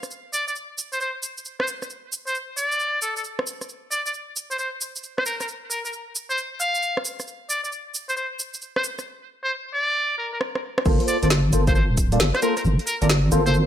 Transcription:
0.03 cross-stick, shaker
0.11 shaker
0.33 muted trumpet D5, shaker
0.48 muted trumpet D5, shaker
0.56 shaker
0.78 shaker
0.93 muted trumpet C5, shaker
1.00 muted trumpet C5, shaker
1.23 shaker
1.37 shaker
1.45 shaker
1.60 muted trumpet C5, cross-stick
1.68 shaker
1.82 cross-stick, shaker
1.90 shaker
2.12 shaker
2.27 muted trumpet C5, shaker
2.35 shaker
2.57 muted trumpet D5, shaker
2.72 shaker
2.80 shaker
3.02 muted trumpet A4, shaker
3.17 muted trumpet A4, shaker
3.24 shaker
3.39 cross-stick
3.47 shaker
3.61 cross-stick, shaker
3.69 shaker
3.91 muted trumpet D5, shaker
4.06 muted trumpet D5, shaker
4.14 shaker
4.36 shaker
4.51 muted trumpet C5, shaker
4.59 muted trumpet C5, shaker
4.81 shaker
4.96 shaker
5.03 shaker
5.18 muted trumpet C5, cross-stick
5.26 muted trumpet A#4, shaker
5.41 muted trumpet A#4, cross-stick, shaker
5.48 shaker
5.71 muted trumpet A#4, shaker
5.85 muted trumpet A#4, shaker
5.93 shaker
6.15 shaker
6.30 muted trumpet C5, shaker
6.38 shaker
6.60 muted trumpet F5, shaker
6.75 shaker
6.83 shaker
6.97 cross-stick
7.05 shaker
7.20 cross-stick, shaker
7.27 shaker
7.50 muted trumpet D5, shaker
7.64 muted trumpet D5, shaker
7.72 shaker
7.95 shaker
8.09 muted trumpet C5, shaker
8.17 muted trumpet C5, shaker
8.39 shaker
8.54 shaker
8.62 shaker
8.76 muted trumpet C5, cross-stick
8.84 shaker
8.99 cross-stick, shaker
9.43 muted trumpet C5
9.74 muted trumpet D5
10.18 muted trumpet A#4
10.33 muted trumpet A#4
10.41 cross-stick
10.55 cross-stick
10.78 cross-stick
10.86 wobble bass G1, synth stab A#3 F4 A4 C5, kick, crash, shaker
11.00 closed hi-hat
11.08 muted trumpet D5, closed hi-hat, shaker
11.23 wobble bass G1, synth stab A#3 F4 A4 C5, muted trumpet D5, closed hi-hat, shaker
11.30 snare, shaker
11.53 wobble bass G1, synth stab A#3 F4 A4 C5, closed hi-hat, shaker
11.67 synth stab A#3 F4 A4, muted trumpet C5, kick, closed hi-hat, shaker
11.75 muted trumpet C5, shaker
11.90 wobble bass D1
11.97 kick, closed hi-hat, shaker
12.12 synth stab A#3 F4 A4 D5, closed hi-hat, shaker
12.20 wobble bass G1, snare, shaker
12.35 muted trumpet C5, cross-stick, closed hi-hat
12.42 synth stab A#3 F4 A4 C5, muted trumpet A#4, closed hi-hat, shaker
12.57 muted trumpet A#4, cross-stick, closed hi-hat, shaker
12.65 wobble bass G1, shaker
12.79 closed hi-hat
12.87 muted trumpet A#4, closed hi-hat, shaker
13.02 wobble bass G1, synth stab A#3 F4 A4 D5, muted trumpet A#4, closed hi-hat, shaker
13.10 snare, shaker
13.32 wobble bass G1, synth stab A#3 F4 A4 C5, closed hi-hat, shaker
13.46 synth stab A#3 F4 A4 C5, muted trumpet C5, closed hi-hat, shaker
13.54 shaker

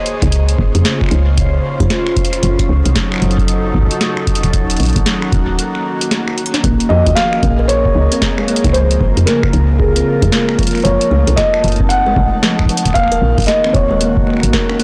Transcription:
Already playing: ambient pad A#3 G#4 C5 C#5 D#5
0.06 closed hi-hat
0.22 fm bass C#2, finger snap, kick, closed hi-hat
0.32 ambient pad C#3 C#4 F4 C5, closed hi-hat
0.49 closed hi-hat
0.59 fm bass G#1, kick
0.75 fm bass F2, closed hi-hat
0.85 snare, closed hi-hat
1.01 finger snap, kick
1.04 finger snap
1.06 finger snap
1.09 fm bass C#2, finger snap, closed hi-hat
1.38 kick, closed hi-hat
1.80 fm bass F2, kick, closed hi-hat
1.90 snare, closed hi-hat
2.07 finger snap
2.16 kick, closed hi-hat
2.25 closed hi-hat
2.33 finger snap, closed hi-hat
2.43 fm bass F#1, ambient pad F#3 D#4 A4, closed hi-hat
2.59 kick, closed hi-hat
2.69 fm bass C#2
2.85 fm bass C2, closed hi-hat
2.95 kick, snare, closed hi-hat
3.12 finger snap
3.14 finger snap
3.16 finger snap
3.18 finger snap
3.20 fm bass F#1, finger snap, closed hi-hat
3.31 closed hi-hat
3.38 kick, closed hi-hat
3.48 closed hi-hat
3.74 fm bass A1, kick
3.78 kick
3.83 kick
3.87 kick
3.91 closed hi-hat
4.01 snare, closed hi-hat
4.17 finger snap
4.27 kick, closed hi-hat
4.35 closed hi-hat
4.43 fm bass D#1, finger snap, closed hi-hat
4.53 ambient pad D#3 A#3 F#4, kick, closed hi-hat
4.70 closed hi-hat
4.77 closed hi-hat
4.80 fm bass A#1, closed hi-hat
4.83 closed hi-hat
4.85 closed hi-hat
4.89 closed hi-hat
4.93 fm bass G#1, kick, closed hi-hat
4.96 closed hi-hat
5.06 snare, closed hi-hat
5.22 finger snap
5.32 fm bass D#1, kick, closed hi-hat
5.59 closed hi-hat
5.75 finger snap
6.01 closed hi-hat
6.11 snare, closed hi-hat
6.28 finger snap
6.38 closed hi-hat
6.46 closed hi-hat
6.54 snare, closed hi-hat
6.64 fm bass A#1, kalimba A#3, ambient pad G#4 A#4 D#5, kick, closed hi-hat
6.80 closed hi-hat
6.89 fm bass F2, kalimba F3, felt piano D#5
7.06 fm bass D#2, kick, closed hi-hat
7.15 kalimba F3, felt piano F5, snare, closed hi-hat
7.33 finger snap
7.43 fm bass A#1, kalimba A#3, kick, closed hi-hat
7.59 kalimba A#4
7.68 felt piano C#5, closed hi-hat
7.85 kick
7.95 fm bass C#2
8.12 kalimba C4, closed hi-hat
8.22 kick, snare, closed hi-hat
8.38 kalimba G#3, finger snap
8.48 kalimba A#3, closed hi-hat
8.56 closed hi-hat
8.64 fm bass C#2, finger snap, kick, closed hi-hat
8.67 finger snap
8.69 finger snap
8.72 ambient pad C#3 F4, kalimba F3, felt piano C5, finger snap, closed hi-hat
8.91 closed hi-hat
9.01 fm bass G#1, kalimba F3, kick
9.17 fm bass F2, closed hi-hat
9.26 kalimba A#3, felt piano A#4, snare, closed hi-hat
9.43 kalimba A#4, finger snap, kick
9.53 fm bass C#2, closed hi-hat
9.78 felt piano G#4, kick
9.96 kalimba C4, closed hi-hat
10.22 fm bass F2, kalimba G#3, kick, closed hi-hat
10.32 kalimba A#3, snare, closed hi-hat
10.49 finger snap
10.59 kalimba F3, kick, closed hi-hat
10.63 closed hi-hat
10.67 closed hi-hat
10.71 closed hi-hat
10.75 finger snap, closed hi-hat
10.77 closed hi-hat
10.80 closed hi-hat
10.82 felt piano C#5, closed hi-hat
10.85 fm bass F#1, kalimba F3, ambient pad D#4 A5, closed hi-hat
11.01 closed hi-hat
11.11 fm bass C#2, kalimba A3
11.27 fm bass C2, kalimba A4, closed hi-hat
11.36 felt piano D#5, kick, snare, closed hi-hat
11.54 finger snap
11.64 fm bass F#1, closed hi-hat
11.68 closed hi-hat
11.72 closed hi-hat
11.76 closed hi-hat
11.80 kalimba C4, kick
11.89 felt piano F#5, closed hi-hat
12.06 kalimba G#3
12.16 fm bass A1, kalimba A3, kick
12.43 kalimba F3, snare, closed hi-hat
12.59 finger snap, kick
12.66 kalimba F3, kick, closed hi-hat
12.77 closed hi-hat
12.85 fm bass D#1, finger snap, closed hi-hat
12.88 finger snap
12.90 finger snap
12.93 felt piano F5, finger snap, kick
12.95 ambient pad D#3 A#3 F#4, kalimba A#3, finger snap, closed hi-hat
13.00 finger snap
13.04 finger snap
13.08 kalimba A#4, finger snap, closed hi-hat
13.22 fm bass A#1
13.38 fm bass G#1, kick, closed hi-hat
13.40 closed hi-hat
13.42 closed hi-hat
13.44 closed hi-hat
13.46 felt piano D#5, snare, closed hi-hat
13.48 closed hi-hat
13.64 kalimba C4, finger snap
13.73 fm bass D#1, felt piano C#5, kick, closed hi-hat
13.91 kalimba G#3
14.01 kalimba A#3, closed hi-hat
14.17 kick
14.27 kalimba A#3, finger snap
14.30 finger snap
14.34 finger snap
14.37 finger snap
14.40 fm bass G#1, finger snap, closed hi-hat
14.53 kalimba A#4, kick, snare, closed hi-hat
14.69 kalimba C#4, finger snap
14.79 kalimba A#3, closed hi-hat

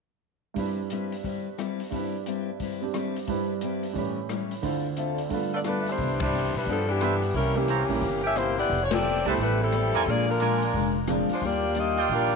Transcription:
0.54 grand piano G2 G3 D4 E4, steel-string acoustic guitar G3 C4 E4 B4, kick, open hi-hat
0.59 grand piano B4
0.90 steel-string acoustic guitar G3 C4 E4 B4, closed hi-hat
1.12 open hi-hat
1.24 steel-string acoustic guitar G3 C4 E4 B4, kick, open hi-hat
1.58 steel-string acoustic guitar G3 C4 E4 B4, cross-stick, closed hi-hat
1.80 open hi-hat
1.91 grand piano G2 G3 D4 E4, steel-string acoustic guitar G3 C4 E4 B4, kick, open hi-hat
1.96 grand piano B4
2.26 steel-string acoustic guitar G3 C4 E4 B4, closed hi-hat
2.60 steel-string acoustic guitar G3 C4 E4 B4, kick, open hi-hat
2.81 grand piano G3 C4 D4 G4
2.94 steel-string acoustic guitar G3 C4 E4 B4, cross-stick, closed hi-hat
3.16 open hi-hat
3.27 grand piano G2 G3 D4 E4 B4, steel-string acoustic guitar G3 C4 E4 B4, kick, open hi-hat
3.61 steel-string acoustic guitar G3 C4 E4 B4, closed hi-hat
3.83 open hi-hat
3.93 grand piano A2 E3 C#4, steel-string acoustic guitar A2 G3, kick, open hi-hat
3.97 steel-string acoustic guitar C#4 E4, grand piano G4 B4
4.29 steel-string acoustic guitar A2 G3 C#4 E4, cross-stick, closed hi-hat
4.51 open hi-hat
4.62 grand piano D2 D3 E4 F4 C5, steel-string acoustic guitar D3 C4 F4 A4, kick, open hi-hat
4.97 steel-string acoustic guitar D3 C4 F4 A4, grand piano E5, closed hi-hat
5.15 grand piano D5, open hi-hat
5.29 grand piano G2 D3 A3 F4, steel-string acoustic guitar G3 B3 F4 A4, kick, open hi-hat
5.34 grand piano B4
5.54 saxophone section B3 F4 A4 D5
5.64 steel-string acoustic guitar G3 B3 F4 A4, saxophone section A3 D4 F4 B4, grand piano D5, cross-stick, closed hi-hat
5.82 grand piano E5
5.86 saxophone section G3 D4 E4 C5, open hi-hat
5.98 upright bass C2, steel-string acoustic guitar C3 E3 B3 D4, kick, open hi-hat
6.20 saxophone section G3 D4 E4 C5, kick, ride
6.32 steel-string acoustic guitar C3 E3 B3 D4
6.54 upright bass B1, saxophone section G3 D4 E4 B4, open hi-hat
6.66 upright bass G2, steel-string acoustic guitar C3 E3 B3 D4, saxophone section F3 B3 D4 A4, kick, open hi-hat
6.88 saxophone section E3 B3 D4 G4
7.00 steel-string acoustic guitar C3 E3 B3 D4, trumpet section D4 B4 C5 E5, cross-stick, closed hi-hat
7.23 open hi-hat
7.34 upright bass C2, steel-string acoustic guitar C3 E3 A#3 C#4, saxophone section G3 C#4 E4 A#4, kick, open hi-hat
7.55 saxophone section E3 A#3 C#4 G4, grand piano G3 A#3 C#4 E4
7.68 steel-string acoustic guitar C3 E3 A#3 C#4, trumpet section E4 C5 C#5 A#5, closed hi-hat
7.89 upright bass A#1, grand piano G3 A#3 C#4 E4, open hi-hat
8.01 upright bass G1, steel-string acoustic guitar C3 E3 A#3 C#4, kick, open hi-hat
8.24 saxophone section C#4 G4 A#4 E5
8.35 steel-string acoustic guitar C3 E3 A#3 C#4, saxophone section A#3 E4 G4 C5, cross-stick, closed hi-hat
8.58 saxophone section B3 E4 G4 D5, open hi-hat
8.69 upright bass F1, steel-string acoustic guitar F3 B3 E4 A4, kick, open hi-hat
8.83 saxophone section C#5
8.91 saxophone section C4 G4 A4 D5, snare, ride
9.03 steel-string acoustic guitar F3 B3 E4 A4
9.25 upright bass C2, grand piano G3 A3 B3 E4, saxophone section A3 E4 G4 C5, trumpet section G4 B4 E5 A5, open hi-hat
9.37 upright bass A1, steel-string acoustic guitar F3 B3 E4 A4, saxophone section A3 E4 G4 B4, kick, open hi-hat
9.61 saxophone section G3 C4 E4 A4
9.71 steel-string acoustic guitar F3 B3 E4 A4, cross-stick, closed hi-hat
9.93 upright bass F2, trumpet section F4 A#4 D5 G#5, open hi-hat
10.05 upright bass A#1, steel-string acoustic guitar A#2 G#3 D4 F4, saxophone section F4 D5, kick, open hi-hat
10.09 saxophone section A#3 G#4
10.28 saxophone section G#3 D4 F4 A#4
10.40 steel-string acoustic guitar A#2 G#3 D4 F4, trumpet section F4 A#4 D5 G#5, closed hi-hat
10.62 open hi-hat
10.74 upright bass F1, steel-string acoustic guitar A#2 G#3 D4 F4, kick, open hi-hat
11.07 steel-string acoustic guitar A#2 G#3 D4 F4, grand piano F3 G#3 C4 D4, cross-stick, closed hi-hat
11.29 saxophone section G#3 D4 F4 C5, muted upright bass stroke, open hi-hat
11.41 upright bass D#2, steel-string acoustic guitar D#3 G3 D4 F4, kick, open hi-hat
11.45 saxophone section A#3 F4 G4 D5
11.75 steel-string acoustic guitar D#3 G3 D4 F4, saxophone section A#3 F4 G4 D#5, closed hi-hat
11.97 trumpet section F4 D5 F5 G5, open hi-hat
12.09 upright bass A#1, steel-string acoustic guitar D#3 G3 D4 F4, saxophone section G3 D4 F4 A#4, kick, open hi-hat

